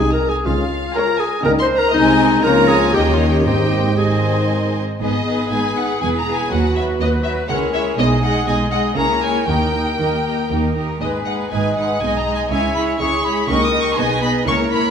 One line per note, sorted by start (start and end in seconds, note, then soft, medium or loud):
0.00 0.35 C2 medium
0.00 0.35 C3 soft
0.00 0.14 G#3 soft
0.00 0.33 G#3 medium
0.00 0.14 D#4 soft
0.00 0.33 D#4 soft
0.00 0.12 G#4 medium
0.00 0.33 D#5 soft
0.00 0.12 G#5 soft
0.00 0.33 G#5 soft
0.13 0.31 A#4 medium
0.13 0.29 A#5 soft
0.29 0.47 G#4 medium
0.29 0.36 G#5 medium
0.46 0.85 C#2 medium
0.46 0.85 C#3 medium
0.46 0.63 G#3 soft
0.46 0.63 C#4 soft
0.46 0.95 F4 medium
0.46 0.94 F5 medium
0.95 1.32 G#3 medium
0.95 1.32 F4 soft
0.95 1.22 A#4 medium
0.95 1.32 C#5 medium
0.95 1.32 G#5 medium
0.95 1.20 A#5 medium
1.19 1.45 G#4 medium
1.19 1.44 G#5 medium
1.43 1.84 C#2 medium
1.43 1.83 C#3 medium
1.43 1.62 G3 medium
1.43 1.81 A#3 medium
1.43 1.81 D#4 medium
1.43 1.62 D#4 medium
1.43 1.53 A#4 medium
1.43 1.81 D#5 medium
1.43 1.81 G5 soft
1.43 1.50 A#5 medium
1.59 1.80 C5 medium
1.59 1.66 C6 medium
1.76 1.93 A#4 medium
1.76 1.93 A#5 medium
1.93 2.40 C2 medium
1.93 2.40 C3 medium
1.93 2.40 G#3 medium
1.93 2.40 C4 medium
1.93 2.40 D#4 medium
1.93 2.45 D#4 medium
1.93 2.40 D#4 medium
1.93 2.43 D#5 medium
1.93 2.40 D#5 medium
1.93 2.41 G#5 medium
2.43 2.94 C#2 medium
2.43 2.93 C#3 medium
2.43 2.94 F3 medium
2.43 2.93 A#3 medium
2.43 2.93 C#4 medium
2.43 2.94 F4 medium
2.43 2.70 A#4 medium
2.43 2.93 C#5 medium
2.43 2.51 A#5 medium
2.43 2.94 A#5 medium
2.68 2.93 G#4 medium
2.68 2.93 G#5 medium
2.93 3.46 D#2 medium
2.93 3.45 D#3 soft
2.93 3.46 D#3 medium
2.93 3.45 A#3 soft
2.93 3.45 C#4 soft
2.93 3.44 D#4 soft
2.93 3.01 G4 medium
2.93 3.45 C#5 soft
2.93 3.44 D#5 soft
2.93 3.11 G5 medium
3.12 3.20 F4 medium
3.12 3.29 F5 medium
3.28 3.46 G4 medium
3.28 3.35 G5 medium
3.45 4.81 G#1 soft
3.45 4.81 G#2 soft
3.45 4.20 G#2 medium
3.45 3.96 D#3 soft
3.45 3.96 C4 soft
3.45 3.97 C4 soft
3.45 3.96 D#4 soft
3.45 3.99 G4 medium
3.45 3.97 C5 soft
3.45 3.97 D#5 soft
3.45 3.97 G5 medium
3.97 4.74 D#3 soft
3.97 4.79 C4 soft
3.97 4.74 C4 soft
3.97 4.79 D#4 soft
3.97 4.76 G#4 soft
3.97 4.80 C5 soft
3.97 4.80 D#5 soft
3.97 4.76 G#5 soft
5.00 5.44 G#1 soft
5.00 5.44 G#2 soft
5.00 5.24 B3 soft
5.00 5.25 D#4 soft
5.00 5.25 G#4 soft
5.00 6.47 G#4 soft
5.00 5.26 B4 soft
5.00 5.48 D#5 medium
5.26 5.50 B3 soft
5.26 5.50 D#4 soft
5.26 5.50 G#4 soft
5.26 5.51 B4 soft
5.51 5.93 G#1 soft
5.51 5.93 G#2 soft
5.51 5.75 B3 soft
5.51 5.75 D#4 soft
5.51 5.75 G#4 soft
5.51 5.75 B4 soft
5.51 5.77 G#5 medium
5.76 6.00 B3 soft
5.76 6.01 D#4 soft
5.76 6.00 G#4 soft
5.76 5.99 B4 soft
5.76 6.01 F#5 medium
6.01 6.43 E1 soft
6.01 6.43 E2 soft
6.01 6.25 B3 soft
6.01 6.25 E4 soft
6.01 6.25 G#4 soft
6.01 6.24 B4 soft
6.01 6.08 G#5 medium
6.18 6.34 A#5 medium
6.25 6.51 B3 soft
6.25 6.51 E4 soft
6.25 6.51 G#4 soft
6.25 6.50 B4 soft
6.34 6.51 G#5 medium
6.51 6.93 D#2 medium
6.51 6.75 F#3 soft
6.51 7.03 F#4 soft
6.51 6.75 F#4 soft
6.51 6.75 B4 soft
6.51 6.76 F#5 medium
6.75 7.00 F#3 soft
6.75 7.00 F#4 soft
6.75 7.00 B4 soft
6.75 6.83 E5 soft
7.00 7.42 D#2 soft
7.00 7.24 F#3 soft
7.00 7.24 F#4 soft
7.00 7.25 B4 soft
7.00 7.49 B4 soft
7.00 7.08 D#5 soft
7.24 7.49 F#3 soft
7.24 7.49 F#4 soft
7.24 7.50 B4 soft
7.24 7.32 E5 medium
7.49 7.91 C#2 medium
7.49 7.91 C#3 soft
7.49 7.73 G#3 soft
7.49 7.73 E4 soft
7.49 7.73 G#4 soft
7.49 8.00 A#4 soft
7.49 7.72 C#5 soft
7.49 7.57 F#5 medium
7.74 7.97 G#3 soft
7.74 7.98 E4 soft
7.74 7.97 G#4 soft
7.74 7.98 C#5 soft
7.74 7.82 E5 medium
7.99 8.40 B1 medium
7.99 8.40 B2 medium
7.99 8.22 G#3 soft
7.99 8.22 D#4 soft
7.99 8.21 G#4 soft
7.99 8.99 G#4 medium
7.99 8.21 D#5 soft
7.99 8.07 D#5 medium
8.23 8.47 G#3 soft
8.23 8.47 D#4 soft
8.23 8.46 G#4 soft
8.23 8.47 D#5 soft
8.23 8.47 F#5 medium
8.47 8.89 B1 soft
8.47 8.89 B2 medium
8.47 8.72 G#3 soft
8.47 8.72 D#4 soft
8.47 8.71 G#4 soft
8.47 8.71 D#5 soft
8.47 8.56 G#5 medium
8.72 8.97 G#3 soft
8.72 8.97 D#4 soft
8.72 8.96 G#4 soft
8.72 8.97 D#5 soft
8.72 8.80 F#5 medium
8.97 9.39 C#2 soft
8.97 9.39 C#3 medium
8.97 9.21 A#3 soft
8.97 9.21 E4 soft
8.97 9.21 G#4 soft
8.97 9.47 A#4 medium
8.97 9.21 C#5 soft
8.97 9.22 A#5 medium
9.22 9.47 A#3 soft
9.22 9.48 E4 soft
9.22 9.47 G#4 soft
9.22 9.48 C#5 soft
9.22 9.48 G#5 medium
9.47 9.91 D#2 soft
9.47 9.91 D#3 soft
9.47 9.73 A#3 soft
9.47 9.73 D#4 soft
9.47 9.72 G4 soft
9.47 10.73 A#4 soft
9.47 9.72 A#4 soft
9.47 10.49 G5 medium
9.73 9.99 A#3 soft
9.73 9.99 D#4 soft
9.73 9.98 G4 soft
9.73 9.98 A#4 soft
9.99 10.42 D#2 soft
9.99 10.42 D#3 soft
9.99 10.24 A#3 soft
9.99 10.24 D#4 soft
9.99 10.24 G4 soft
9.99 10.23 A#4 soft
10.25 10.49 A#3 soft
10.25 10.50 D#4 soft
10.25 10.50 G4 soft
10.25 10.49 A#4 soft
10.50 10.94 D#2 soft
10.50 10.93 D#3 soft
10.50 10.75 A#3 soft
10.50 10.75 D#4 soft
10.50 10.75 G4 soft
10.50 10.76 A#4 soft
10.76 11.01 A#3 soft
10.76 11.01 D#4 soft
10.76 11.01 G4 soft
10.76 11.01 A#4 soft
11.01 11.44 G#1 soft
11.01 11.44 G#2 soft
11.01 11.25 G#3 soft
11.01 11.25 D#4 soft
11.01 11.26 G#4 soft
11.01 11.48 B4 soft
11.01 11.26 B4 soft
11.01 11.09 D#5 soft
11.26 11.51 G#3 soft
11.26 11.51 D#4 soft
11.26 11.52 G#4 soft
11.26 11.52 B4 soft
11.26 11.34 F#5 soft
11.51 11.94 G#1 soft
11.51 11.94 G#2 soft
11.51 11.76 G#3 soft
11.51 11.76 D#4 soft
11.51 11.76 G#4 soft
11.51 11.76 B4 soft
11.51 12.49 D#5 soft
11.51 11.76 G#5 soft
11.76 12.01 G#3 soft
11.76 12.01 D#4 soft
11.76 12.01 G#4 soft
11.76 12.01 B4 soft
11.76 12.01 F#5 soft
12.01 12.43 B1 soft
12.01 12.43 B2 soft
12.01 12.25 G#3 soft
12.01 12.25 D#4 soft
12.01 12.25 G#4 soft
12.01 12.25 D#5 soft
12.01 12.18 G#5 medium
12.18 12.35 A#5 medium
12.26 12.50 G#3 soft
12.26 12.51 D#4 soft
12.26 12.51 G#4 soft
12.26 12.51 D#5 soft
12.35 12.42 G#5 medium
12.51 12.92 C#2 soft
12.51 12.92 C#3 medium
12.51 12.74 G#3 soft
12.51 12.75 E4 soft
12.51 12.74 G#4 soft
12.51 12.74 C#5 soft
12.51 13.02 E5 medium
12.51 12.75 G#5 medium
12.75 12.99 G#3 soft
12.75 12.99 E4 soft
12.75 12.99 G#4 soft
12.75 12.99 C#5 soft
12.75 12.83 B5 medium
12.99 13.41 C#2 medium
12.99 13.41 C#3 medium
12.99 13.23 G#3 soft
12.99 13.23 E4 soft
12.99 13.23 G#4 soft
12.99 13.51 G#4 soft
12.99 13.23 C#5 soft
12.99 13.24 C#6 medium
13.23 13.48 G#3 soft
13.23 13.48 E4 soft
13.23 13.48 G#4 soft
13.23 13.48 C#5 soft
13.23 13.48 B5 medium
13.48 13.90 C#2 medium
13.48 13.90 C#3 medium
13.48 13.72 A#3 medium
13.48 13.72 D#4 medium
13.48 13.73 G4 soft
13.48 13.97 A#4 medium
13.48 13.73 D#5 soft
13.48 13.65 C#6 medium
13.65 13.81 D#6 medium
13.73 13.97 A#3 soft
13.73 13.96 D#4 soft
13.73 13.98 G4 soft
13.73 13.97 D#5 soft
13.81 13.98 C#6 medium
13.97 14.39 B1 medium
13.97 14.39 B2 medium
13.97 14.21 B3 soft
13.97 14.21 D#4 soft
13.97 14.22 G#4 medium
13.97 14.49 B4 medium
13.97 14.22 D#5 medium
13.97 14.23 G#5 medium
14.22 14.46 B3 soft
14.22 14.46 D#4 soft
14.22 14.47 G#4 soft
14.22 14.47 D#5 soft
14.22 14.30 B5 medium
14.47 14.89 C#2 medium
14.47 14.89 C#3 medium
14.47 14.70 A#3 soft
14.47 14.70 E4 soft
14.47 14.71 A#4 medium
14.47 14.90 A#4 medium
14.47 14.71 C#5 soft
14.47 14.55 C#6 medium
14.71 14.90 A#3 soft
14.71 14.90 E4 soft
14.71 14.90 A#4 soft
14.71 14.90 C#5 soft
14.71 14.90 B5 medium